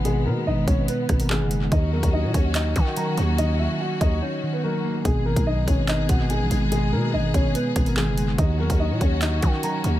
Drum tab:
HH |x-----x-x-xx--x-|x--x--x-x-x-x-x-|x-----x---------|x--x--x-x-x-x-x-|
CP |------------x---|--------x-------|----------------|--------x-------|
SD |----------r-----|----------------|----------------|----------------|
BD |------o---o-----|o--o--o---o-----|------o---------|o--o--o---o-----|

HH |x-----x-x-xx--x-|x--x--x-x-x-x-x-|
CP |------------x---|--------x-------|
SD |----------r-----|----------------|
BD |------o---o-----|o--o--o---o-----|